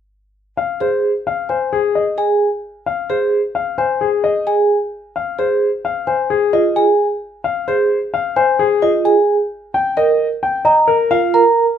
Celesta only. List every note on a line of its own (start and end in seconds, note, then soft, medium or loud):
1.49 1.79 G#5 soft
2.18 2.48 G#5 soft
3.78 4.08 G#5 soft
4.47 4.77 G#5 medium
6.07 6.37 G#5 soft
6.76 7.06 G#5 medium
8.36 8.66 G#5 medium
9.05 9.35 G#5 medium
10.65 10.95 A#5 medium
11.34 11.64 A#5 medium